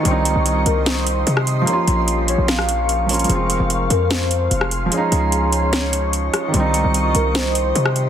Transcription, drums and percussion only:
0.05 closed hi-hat medium
0.25 closed hi-hat medium
0.46 closed hi-hat medium
0.66 closed hi-hat medium
0.86 snare loud
0.86 closed hi-hat medium
1.07 closed hi-hat medium
1.27 closed hi-hat medium
1.37 cross-stick medium
1.47 closed hi-hat medium
1.67 closed hi-hat medium
1.88 closed hi-hat medium
2.08 closed hi-hat medium
2.28 closed hi-hat medium
2.48 snare loud
2.48 closed hi-hat medium
2.59 cross-stick medium
2.69 closed hi-hat medium
2.89 closed hi-hat medium
3.09 closed hi-hat medium
3.09 open hi-hat medium
3.14 closed hi-hat medium
3.19 closed hi-hat medium
3.24 closed hi-hat medium
3.30 closed hi-hat medium
3.50 closed hi-hat medium
3.70 closed hi-hat medium
3.90 closed hi-hat medium
4.11 snare loud
4.11 closed hi-hat medium
4.31 closed hi-hat medium
4.51 closed hi-hat medium
4.61 cross-stick medium
4.71 closed hi-hat medium
4.92 closed hi-hat medium
5.12 closed hi-hat medium
5.32 closed hi-hat medium
5.52 closed hi-hat medium
5.73 snare loud
5.73 closed hi-hat medium
5.93 closed hi-hat loud
6.13 closed hi-hat medium
6.34 cross-stick medium
6.34 closed hi-hat medium
6.54 closed hi-hat medium
6.74 closed hi-hat medium
6.94 closed hi-hat medium
7.15 closed hi-hat medium
7.35 snare loud
7.35 closed hi-hat medium
7.55 closed hi-hat medium
7.75 closed hi-hat medium
7.86 cross-stick medium
7.96 closed hi-hat medium

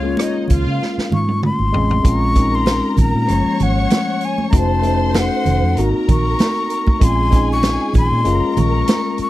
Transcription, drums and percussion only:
0.17 cross-stick medium
0.17 closed hi-hat medium
0.17 high conga medium
0.48 kick medium
0.48 closed hi-hat medium
0.48 low conga soft
0.82 snare soft
0.82 muted conga soft
0.98 snare soft
1.12 muted conga medium
1.12 low conga medium
1.28 high tom medium
1.43 mid tom medium
1.43 high conga medium
1.59 high conga soft
1.74 floor tom medium
1.90 floor tom medium
1.90 high conga medium
2.05 kick loud
2.05 closed hi-hat medium
2.35 kick medium
2.35 closed hi-hat medium
2.35 muted conga soft
2.66 snare loud
2.66 closed hi-hat medium
2.66 high conga medium
2.97 kick medium
2.97 closed hi-hat medium
2.97 low conga medium
3.28 closed hi-hat medium
3.28 muted conga soft
3.60 closed hi-hat medium
3.60 muted conga soft
3.60 low conga medium
3.90 snare loud
3.90 closed hi-hat medium
3.90 high conga medium
4.21 closed hi-hat medium
4.38 high conga medium
4.52 kick loud
4.52 closed hi-hat medium
4.83 closed hi-hat medium
4.83 muted conga soft
5.14 snare loud
5.14 closed hi-hat medium
5.14 high conga medium
5.45 closed hi-hat medium
5.45 low conga medium
5.77 closed hi-hat medium
6.09 kick medium
6.09 closed hi-hat medium
6.09 muted conga medium
6.09 low conga medium
6.39 snare loud
6.39 closed hi-hat medium
6.39 high conga medium
6.70 closed hi-hat medium
6.87 kick medium
6.87 high conga medium
7.01 kick loud
7.01 closed hi-hat medium
7.32 kick medium
7.32 closed hi-hat medium
7.32 muted conga soft
7.63 snare loud
7.63 closed hi-hat medium
7.63 high conga medium
7.93 kick medium
7.93 closed hi-hat medium
7.93 low conga medium
8.25 closed hi-hat medium
8.25 muted conga soft
8.57 closed hi-hat medium
8.57 muted conga medium
8.57 low conga medium
8.87 snare loud
8.87 closed hi-hat medium
8.87 high conga medium
9.18 closed hi-hat medium

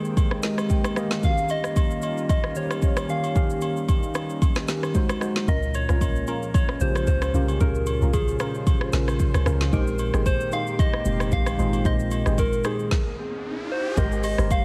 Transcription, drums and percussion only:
0.05 shaker soft
0.17 kick loud
0.17 high agogo medium
0.17 shaker medium
0.31 cross-stick medium
0.43 snare medium
0.43 shaker loud
0.58 cross-stick medium
0.58 high agogo medium
0.58 shaker medium
0.70 kick medium
0.70 shaker medium
0.84 cross-stick loud
0.84 high agogo medium
0.84 shaker medium
0.96 cross-stick loud
0.96 shaker medium
1.11 snare medium
1.11 high agogo medium
1.11 shaker medium
1.23 kick loud
1.23 shaker medium
1.38 shaker medium
1.49 high agogo medium
1.49 shaker medium
1.64 cross-stick medium
1.64 shaker medium
1.76 kick medium
1.76 high agogo medium
1.76 shaker medium
1.91 shaker medium
2.02 high agogo medium
2.02 shaker medium
2.17 shaker soft
2.29 kick loud
2.29 high agogo medium
2.29 shaker medium
2.44 cross-stick medium
2.55 shaker loud
2.71 cross-stick medium
2.71 high agogo medium
2.71 shaker medium
2.82 kick medium
2.82 shaker medium
2.97 cross-stick loud
2.97 high agogo medium
2.97 shaker medium
3.09 shaker medium
3.24 high agogo medium
3.24 shaker medium
3.35 kick loud
3.35 shaker medium
3.50 shaker medium
3.61 high agogo medium
3.61 shaker medium
3.77 shaker medium
3.89 kick medium
3.89 high agogo medium
3.89 shaker medium
4.03 shaker medium
4.14 cross-stick medium
4.14 high agogo medium
4.14 shaker medium
4.30 shaker soft
4.42 kick loud
4.42 high agogo medium
4.42 shaker medium
4.56 cross-stick medium
4.56 snare medium
4.56 shaker medium
4.68 snare medium
4.68 shaker loud
4.83 cross-stick medium
4.83 high agogo medium
4.83 shaker medium
4.95 kick medium
4.95 shaker medium
5.09 cross-stick loud
5.09 high agogo medium
5.09 shaker medium
5.21 cross-stick medium
5.21 shaker medium
5.36 snare medium
5.36 high agogo medium
5.36 shaker medium
5.48 kick loud
5.48 shaker medium
5.63 shaker medium
5.74 high agogo medium
5.74 shaker medium
5.89 cross-stick medium
5.89 shaker medium
6.01 kick medium
6.01 high agogo medium
6.01 shaker medium
6.16 shaker medium
6.27 high agogo medium
6.27 shaker medium
6.43 shaker soft
6.54 kick loud
6.54 high agogo medium
6.54 shaker medium
6.69 cross-stick medium
6.80 shaker loud
6.95 cross-stick medium
6.95 high agogo medium
6.95 shaker medium
7.07 kick medium
7.07 shaker medium
7.22 cross-stick loud
7.22 high agogo medium
7.22 shaker medium
7.34 shaker medium
7.48 high agogo medium
7.48 shaker soft
7.60 kick loud
7.60 shaker medium
7.75 shaker medium
7.86 high agogo medium
7.86 shaker medium
8.02 shaker medium
8.13 kick medium
8.13 high agogo medium
8.13 shaker medium
8.28 shaker medium
8.39 cross-stick medium
8.39 high agogo medium
8.39 shaker medium
8.55 shaker soft
8.67 kick loud
8.67 high agogo medium
8.67 shaker medium
8.81 cross-stick medium
8.93 snare medium
8.93 shaker loud
9.08 cross-stick medium
9.08 high agogo medium
9.08 shaker medium
9.19 kick medium
9.19 shaker medium
9.34 cross-stick medium
9.34 high agogo medium
9.34 shaker medium
9.46 cross-stick loud
9.46 shaker medium
9.61 snare medium
9.61 high agogo medium
9.61 shaker soft
9.73 kick loud
9.73 shaker medium
9.87 shaker medium
9.99 high agogo medium
9.99 shaker medium
10.14 cross-stick medium
10.14 shaker medium
10.26 kick medium
10.26 high agogo medium
10.26 shaker medium
10.40 shaker medium
10.52 high agogo medium
10.52 shaker medium
10.67 shaker soft
10.79 kick loud
10.79 high agogo medium
10.79 shaker medium
10.93 cross-stick medium
11.05 shaker loud
11.20 cross-stick medium
11.20 high agogo medium
11.20 shaker medium
11.32 kick medium
11.32 shaker medium
11.46 cross-stick medium
11.46 high agogo medium
11.46 shaker medium
11.59 shaker medium
11.73 high agogo medium
11.73 shaker medium
11.85 kick loud
11.85 shaker medium
12.00 shaker medium
12.11 high agogo medium
12.11 shaker medium
12.26 cross-stick medium
12.26 shaker medium
12.38 kick medium
12.38 high agogo medium
12.38 shaker medium
12.53 shaker medium
12.64 cross-stick medium
12.64 high agogo medium
12.64 shaker medium
12.79 shaker soft
12.91 kick loud
12.91 snare medium
13.97 kick loud
13.97 shaker medium
14.12 shaker medium
14.23 open hi-hat medium
14.23 high agogo medium
14.23 shaker medium
14.38 cross-stick medium
14.38 shaker medium
14.51 kick medium
14.51 high agogo medium
14.51 shaker medium

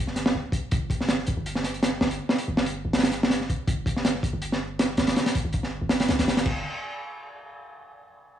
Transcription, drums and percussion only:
0.07 snare soft
0.16 snare soft
0.16 closed hi-hat medium
0.26 snare loud
0.52 kick medium
0.52 closed hi-hat medium
0.71 kick loud
0.71 closed hi-hat medium
0.90 kick medium
0.90 closed hi-hat medium
1.01 snare soft
1.09 snare loud
1.09 closed hi-hat medium
1.19 snare soft
1.27 kick loud
1.27 closed hi-hat medium
1.46 closed hi-hat medium
1.55 snare medium
1.64 snare soft
1.64 closed hi-hat medium
1.74 closed hi-hat soft
1.83 snare loud
1.83 closed hi-hat medium
2.01 snare loud
2.11 closed hi-hat medium
2.29 snare loud
2.38 closed hi-hat medium
2.57 snare loud
2.66 closed hi-hat medium
2.93 snare medium
2.93 closed hi-hat medium
2.99 snare medium
2.99 closed hi-hat medium
3.03 snare loud
3.03 closed hi-hat medium
3.12 snare medium
3.12 closed hi-hat medium
3.23 snare loud
3.30 snare loud
3.30 closed hi-hat medium
3.41 snare soft
3.50 kick medium
3.50 closed hi-hat medium
3.68 kick loud
3.68 closed hi-hat medium
3.86 kick loud
3.86 closed hi-hat medium
3.97 snare medium
4.05 snare loud
4.05 closed hi-hat medium
4.15 snare soft
4.23 kick medium
4.23 closed hi-hat medium
4.42 closed hi-hat medium
4.52 snare medium
4.79 snare loud
4.79 closed hi-hat loud
4.97 snare loud
4.97 closed hi-hat medium
5.07 snare loud
5.07 closed hi-hat medium
5.16 snare loud
5.16 closed hi-hat medium
5.26 snare loud
5.26 closed hi-hat medium
5.35 kick loud
5.35 closed hi-hat medium
5.53 kick medium
5.53 closed hi-hat medium
5.63 snare soft
5.89 snare loud
5.89 closed hi-hat medium
6.00 snare loud
6.00 closed hi-hat medium
6.08 snare loud
6.08 closed hi-hat medium
6.19 snare loud
6.19 closed hi-hat medium
6.28 snare medium
6.28 closed hi-hat medium
6.37 snare loud
6.37 closed hi-hat medium
6.46 kick loud
6.46 crash medium

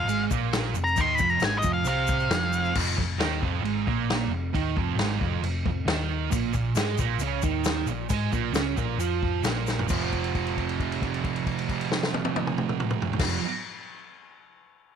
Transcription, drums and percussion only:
0.09 crash medium
0.09 shaker medium
0.31 kick medium
0.31 shaker loud
0.53 snare loud
0.53 crash medium
0.53 shaker medium
0.75 shaker loud
0.87 shaker soft
0.96 kick loud
0.96 crash medium
0.96 shaker medium
1.18 kick medium
1.18 shaker loud
1.29 shaker soft
1.40 snare loud
1.40 crash medium
1.40 shaker medium
1.62 kick medium
1.62 shaker loud
1.85 crash medium
1.85 shaker medium
2.07 kick loud
2.07 shaker loud
2.20 shaker soft
2.31 snare loud
2.31 crash medium
2.31 shaker medium
2.53 shaker medium
2.65 shaker soft
2.75 kick loud
2.75 crash loud
2.75 crash medium
2.98 kick medium
3.20 snare loud
3.20 crash medium
3.43 kick medium
3.65 crash medium
3.87 kick medium
4.10 snare loud
4.10 crash medium
4.55 kick loud
4.55 crash medium
4.77 kick loud
4.99 snare loud
4.99 crash medium
5.21 kick medium
5.43 crash medium
5.66 kick medium
5.88 snare loud
5.88 crash medium
6.32 kick loud
6.32 crash medium
6.32 shaker loud
6.53 kick medium
6.53 shaker medium
6.75 snare loud
6.75 crash medium
6.75 shaker loud
6.98 kick medium
6.98 shaker medium
7.19 crash medium
7.19 shaker loud
7.42 kick loud
7.42 shaker medium
7.64 snare loud
7.64 crash medium
7.64 shaker loud
7.87 shaker medium
8.09 kick loud
8.09 crash medium
8.09 shaker loud
8.32 kick medium
8.32 shaker medium
8.54 snare loud
8.54 crash medium
8.54 shaker medium
8.77 kick medium
8.77 shaker medium
9.00 crash medium
9.00 shaker medium
9.23 kick medium
9.44 snare loud
9.44 crash medium
9.44 shaker loud
9.67 snare medium
9.67 shaker medium
9.79 floor tom medium
9.88 kick loud
9.88 crash medium
9.88 shaker medium
10.12 kick medium
10.12 crash medium
10.24 crash soft
10.35 kick medium
10.35 crash soft
10.47 crash soft
10.57 kick medium
10.57 crash medium
10.69 crash medium
10.80 kick medium
10.80 crash soft
10.92 crash medium
11.02 kick medium
11.02 crash medium
11.14 crash medium
11.24 kick medium
11.24 crash medium
11.36 crash soft
11.46 kick medium
11.46 crash medium
11.59 crash medium
11.69 kick medium
11.69 crash medium
11.81 crash medium
11.92 snare medium
12.03 snare loud
12.14 high tom medium
12.25 high tom loud
12.36 high tom loud
12.47 mid tom loud
12.58 mid tom loud
12.69 mid tom loud
12.80 mid tom loud
12.90 mid tom loud
13.02 floor tom loud
13.13 floor tom loud
13.19 kick loud
13.19 snare medium
13.19 crash loud

